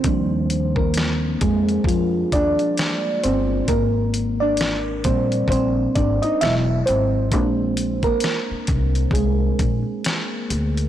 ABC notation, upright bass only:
X:1
M:4/4
L:1/16
Q:"Swing 16ths" 1/4=66
K:Eb
V:1 name="Upright bass" clef=bass
E,,6 F,,2 F,,2 E,, z3 G,,,2 | A,,,6 B,,,2 B,,,2 A,,, z =E,,,2 ^G,,,2 | B,,,4 z2 C,,2 C,,2 B,,, z3 D,,2 |]